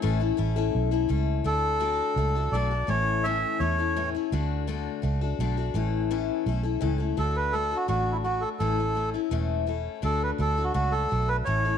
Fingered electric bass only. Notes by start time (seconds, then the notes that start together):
0.04 A1
0.39 A1
0.75 B1
1.10 C#2
1.44 D2
2.16 C#2
2.52 B1
2.88 A1
3.60 E2
4.32 D2
5.03 C#2
5.39 B1
5.74 A1
6.46 B1
6.82 C#2
7.18 D2
7.88 A1
8.60 A1
9.31 E1
10.03 D2
10.39 D2
10.75 C#2
11.12 B1
11.47 A1